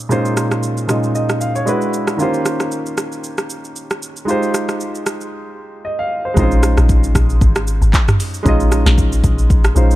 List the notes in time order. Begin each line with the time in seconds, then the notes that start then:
Already playing: G#3 C#4 D#4 F4 C5
0.09 A#2 G#3 C#4 D#4 F4 C5, shaker
0.25 shaker
0.37 cross-stick, shaker
0.51 cross-stick, shaker
0.63 shaker
0.77 shaker
0.88 A#2 G#3 C#4 D#4 F4 D#5, cross-stick, shaker
1.03 shaker
1.15 D#5, shaker
1.29 cross-stick, shaker
1.41 F5, shaker
1.55 C#5, shaker
1.66 G#3 D4 E4 F#4 B4, shaker
1.81 shaker
1.93 shaker
2.07 cross-stick, shaker
2.17 D#3 A#3 C#4 F4, shaker
2.21 G4 C5
2.34 shaker
2.45 cross-stick, shaker
2.60 cross-stick, shaker
2.72 shaker
2.86 shaker
2.97 cross-stick, shaker
3.12 shaker
3.24 shaker
3.38 cross-stick, shaker
3.50 shaker
3.64 shaker
3.76 shaker
3.90 cross-stick, shaker
4.02 shaker
4.16 shaker
4.25 G#3 D#4 F4, shaker
4.29 G4 C5
4.43 shaker
4.54 cross-stick, shaker
4.69 cross-stick, shaker
4.80 shaker
4.95 shaker
5.06 cross-stick, shaker
5.21 shaker
5.85 D#5
5.99 F5
6.25 C5
6.34 A#1 G#3 C4 D#4, kick, shaker
6.39 C#4 F4 C5
6.51 shaker
6.63 cross-stick, shaker
6.77 A#1, cross-stick, shaker
6.89 kick, shaker
7.04 shaker
7.15 A#1, kick, cross-stick, shaker
7.30 shaker
7.41 G#1, kick, shaker
7.56 cross-stick, shaker
7.67 shaker
7.82 G#1, shaker
7.94 kick, clap, shaker
8.08 cross-stick, mid tom, shaker
8.20 open hi-hat, shaker
8.34 shaker
8.43 A#1 G#3 C#4 D#4, kick, shaker
8.47 F4 D#5
8.60 shaker
8.72 cross-stick, shaker
8.86 A#1, cross-stick, snare, shaker
8.98 kick, shaker
9.12 shaker
9.24 A#1, kick, shaker
9.38 shaker
9.50 kick, shaker
9.64 cross-stick, shaker
9.75 A#1 G#3 C#4 D#4 F4 C5, shaker
9.91 shaker